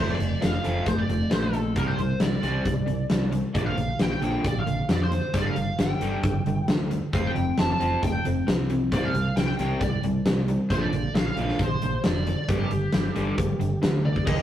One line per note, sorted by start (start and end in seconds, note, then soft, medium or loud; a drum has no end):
0.00 0.12 F1 medium
0.00 0.17 F3 medium
0.00 0.18 A3 medium
0.00 0.18 C4 medium
0.10 0.41 D5 medium
0.18 0.34 F1 medium
0.18 0.39 F3 medium
0.18 0.39 A3 medium
0.18 closed hi-hat medium
0.41 0.57 F1 medium
0.41 0.62 F3 medium
0.41 0.62 A3 medium
0.41 0.52 F5 medium
0.41 snare medium
0.41 closed hi-hat medium
0.53 0.88 F5 medium
0.64 0.79 F1 medium
0.64 0.85 F3 medium
0.64 0.85 A3 medium
0.64 0.86 C4 medium
0.64 closed hi-hat medium
0.86 1.01 F1 medium
0.86 1.07 F3 medium
0.86 1.07 A3 medium
0.86 0.98 C5 medium
0.86 kick medium
0.86 closed hi-hat medium
0.98 1.33 D5 medium
1.09 1.23 F1 medium
1.09 1.29 F3 medium
1.09 1.29 A3 medium
1.09 closed hi-hat soft
1.30 1.76 A#1 medium
1.30 1.51 F3 medium
1.30 1.51 A3 medium
1.30 1.41 C5 medium
1.30 snare medium
1.30 closed hi-hat medium
1.42 1.77 A4 medium
1.53 1.74 F3 medium
1.53 1.74 A3 medium
1.53 closed hi-hat medium
1.76 1.91 C2 medium
1.76 1.97 C3 medium
1.76 1.97 G3 medium
1.76 1.98 C4 medium
1.76 1.87 A#4 medium
1.76 kick medium
1.76 closed hi-hat medium
1.88 2.22 C5 medium
1.98 2.13 C2 medium
1.98 2.19 C3 medium
1.98 2.19 G3 medium
1.98 closed hi-hat soft
2.20 2.35 C2 medium
2.20 2.41 C3 medium
2.20 2.41 G3 medium
2.20 3.29 D5 medium
2.20 snare medium
2.20 closed hi-hat medium
2.43 2.58 C2 medium
2.43 2.64 C3 medium
2.43 2.65 G3 medium
2.43 2.65 C4 medium
2.43 closed hi-hat medium
2.65 2.80 C2 medium
2.65 2.86 C3 medium
2.65 2.86 G3 medium
2.65 kick medium
2.65 closed hi-hat medium
2.87 3.03 C2 medium
2.87 3.08 C3 medium
2.87 3.08 G3 medium
2.87 closed hi-hat soft
3.10 3.39 C2 medium
3.10 3.31 C3 medium
3.10 3.31 G3 medium
3.10 snare medium
3.10 closed hi-hat medium
3.32 3.53 C3 medium
3.32 3.53 G3 medium
3.32 closed hi-hat soft
3.54 3.70 A#1 medium
3.54 3.76 A#2 medium
3.54 3.76 D3 medium
3.54 3.76 F3 medium
3.54 3.59 D5 medium
3.54 kick medium
3.54 closed hi-hat medium
3.66 3.98 F5 medium
3.78 3.92 A#1 medium
3.78 3.98 A#2 medium
3.78 3.98 D3 medium
3.78 closed hi-hat soft
3.99 4.14 A#1 medium
3.99 4.20 A#2 medium
3.99 4.20 D3 medium
3.99 4.11 G5 medium
3.99 snare medium
3.99 closed hi-hat medium
4.12 4.46 G5 medium
4.21 4.36 A#1 medium
4.21 4.43 A#2 medium
4.21 4.43 D3 medium
4.21 4.44 F3 medium
4.21 closed hi-hat medium
4.44 4.59 A#1 medium
4.44 4.65 A#2 medium
4.44 4.65 D3 medium
4.44 4.56 D5 medium
4.44 kick medium
4.44 closed hi-hat medium
4.60 4.91 F5 medium
4.66 4.81 A#1 medium
4.66 4.87 A#2 medium
4.66 4.87 D3 medium
4.66 closed hi-hat medium
4.88 5.18 F2 medium
4.88 5.09 A#2 medium
4.88 5.10 D3 medium
4.88 5.01 D5 medium
4.88 snare medium
4.88 closed hi-hat medium
5.03 5.37 C5 medium
5.11 5.32 A#2 medium
5.11 5.32 D3 medium
5.11 closed hi-hat medium
5.34 5.49 G1 medium
5.34 5.55 G2 medium
5.34 5.55 D3 medium
5.34 5.55 G3 medium
5.34 5.46 D5 medium
5.34 kick medium
5.34 closed hi-hat medium
5.46 5.80 F5 medium
5.56 5.71 G1 medium
5.56 5.77 G2 soft
5.56 5.77 D3 medium
5.56 closed hi-hat medium
5.78 5.93 G1 medium
5.78 6.00 G2 medium
5.78 6.00 D3 medium
5.78 6.88 G5 medium
5.78 snare medium
5.78 closed hi-hat medium
6.00 6.15 G1 medium
6.00 6.23 G2 medium
6.00 6.23 D3 medium
6.00 6.23 G3 medium
6.00 closed hi-hat medium
6.23 6.38 G1 medium
6.23 6.44 G2 medium
6.23 6.45 D3 medium
6.23 kick loud
6.23 closed hi-hat medium
6.45 6.60 G1 medium
6.45 6.67 G2 medium
6.45 6.67 D3 medium
6.45 closed hi-hat soft
6.68 6.97 D2 medium
6.68 6.89 G2 medium
6.68 6.89 D3 medium
6.68 snare medium
6.68 closed hi-hat medium
6.91 7.11 G2 medium
6.91 7.11 D3 medium
6.91 closed hi-hat medium
7.13 7.28 F1 medium
7.13 7.35 F3 medium
7.13 7.35 C4 medium
7.13 7.35 F4 medium
7.13 7.26 F5 medium
7.13 kick medium
7.13 closed hi-hat medium
7.27 7.57 G5 medium
7.35 7.50 F1 medium
7.35 7.56 F3 medium
7.35 7.57 C4 medium
7.35 closed hi-hat soft
7.58 7.72 F1 medium
7.58 7.79 F3 medium
7.58 7.78 C4 medium
7.58 7.69 A5 medium
7.58 snare medium
7.58 closed hi-hat medium
7.71 8.01 A5 medium
7.80 7.95 F1 medium
7.80 8.01 F3 medium
7.80 8.01 C4 medium
7.80 8.02 F4 medium
7.80 closed hi-hat medium
8.03 8.17 F1 medium
8.03 8.23 F3 medium
8.03 8.23 C4 medium
8.03 8.24 G5 medium
8.03 kick medium
8.03 closed hi-hat medium
8.25 8.39 F1 medium
8.25 8.45 F3 medium
8.25 8.46 C4 medium
8.25 closed hi-hat medium
8.47 8.92 C2 medium
8.47 8.67 F3 medium
8.47 8.67 C4 medium
8.47 snare medium
8.47 closed hi-hat medium
8.70 8.90 F3 medium
8.70 8.90 C4 medium
8.70 closed hi-hat medium
8.92 9.07 C2 medium
8.92 9.13 C3 medium
8.92 9.13 G3 medium
8.92 9.14 C4 medium
8.92 9.05 D5 medium
8.92 kick medium
8.92 closed hi-hat medium
9.05 9.39 F5 medium
9.14 9.29 C2 medium
9.14 9.35 C3 medium
9.14 9.35 G3 medium
9.14 closed hi-hat medium
9.36 9.51 C2 medium
9.36 9.57 C3 medium
9.36 9.57 G3 medium
9.36 9.46 G5 medium
9.36 snare medium
9.36 closed hi-hat medium
9.48 9.82 G5 medium
9.48 snare soft
9.59 9.73 C2 medium
9.59 9.80 C3 medium
9.59 9.80 G3 medium
9.59 9.80 C4 medium
9.59 closed hi-hat medium
9.80 9.95 C2 medium
9.80 10.01 C3 medium
9.80 10.01 G3 medium
9.80 10.01 D5 medium
9.80 kick medium
9.80 closed hi-hat medium
10.03 10.19 C2 medium
10.03 10.24 C3 medium
10.03 10.24 G3 medium
10.03 closed hi-hat medium
10.26 10.55 C2 medium
10.26 10.46 C3 medium
10.26 10.46 G3 medium
10.26 snare loud
10.26 closed hi-hat medium
10.48 10.68 C3 medium
10.48 10.69 G3 medium
10.48 closed hi-hat soft
10.70 10.85 A#1 medium
10.70 10.92 A#2 medium
10.70 10.92 D3 medium
10.70 10.92 F3 medium
10.70 10.82 C5 medium
10.70 kick medium
10.70 closed hi-hat medium
10.81 11.15 D5 medium
10.93 11.07 A#1 medium
10.93 11.13 A#2 medium
10.93 11.13 D3 medium
10.93 closed hi-hat soft
11.14 11.29 A#1 medium
11.14 11.35 A#2 medium
11.14 11.36 D3 medium
11.14 11.26 F5 medium
11.14 snare medium
11.14 closed hi-hat medium
11.27 11.61 F5 loud
11.36 11.51 A#1 medium
11.36 11.59 A#2 medium
11.36 11.59 D3 medium
11.36 11.59 F3 medium
11.36 closed hi-hat soft
11.48 snare soft
11.59 11.74 A#1 medium
11.59 11.80 A#2 medium
11.59 11.80 D3 medium
11.59 12.02 C5 medium
11.59 kick medium
11.59 closed hi-hat medium
11.82 11.97 A#1 medium
11.82 12.02 A#2 medium
11.82 12.02 D3 medium
11.82 closed hi-hat soft
12.04 12.33 F1 medium
12.04 12.24 A#2 medium
12.04 12.25 D3 medium
12.04 12.46 D5 medium
12.04 snare medium
12.04 closed hi-hat medium
12.27 12.47 A#2 medium
12.27 12.47 D3 medium
12.27 closed hi-hat medium
12.48 12.63 G1 medium
12.48 12.70 G2 medium
12.48 12.70 D3 medium
12.48 12.70 G3 medium
12.48 14.02 G4 medium
12.48 kick medium
12.48 closed hi-hat medium
12.71 12.86 G1 medium
12.71 12.91 G2 medium
12.71 12.92 D3 medium
12.71 closed hi-hat medium
12.93 13.08 G1 medium
12.93 13.14 G2 medium
12.93 13.14 D3 medium
12.93 snare medium
12.93 closed hi-hat medium
13.15 13.31 G1 medium
13.15 13.36 G2 medium
13.15 13.37 D3 medium
13.15 13.37 G3 medium
13.15 closed hi-hat medium
13.37 13.53 G1 medium
13.37 13.58 G2 medium
13.37 13.58 D3 medium
13.37 kick medium
13.37 closed hi-hat medium
13.60 13.75 G1 medium
13.60 13.80 G2 medium
13.60 13.80 D3 medium
13.60 closed hi-hat medium
13.82 14.12 D2 medium
13.82 14.03 G2 medium
13.82 14.03 D3 medium
13.82 snare loud
13.82 closed hi-hat medium
14.05 14.26 G2 medium
14.05 14.25 D3 medium
14.05 14.26 D5 medium
14.05 high tom soft
14.16 kick medium
14.26 14.42 D#2 medium
14.26 14.42 D#3 medium
14.26 14.42 A#3 medium
14.26 14.42 D#4 medium
14.26 14.42 G4 medium
14.26 14.42 D#5 medium
14.26 kick loud
14.26 crash medium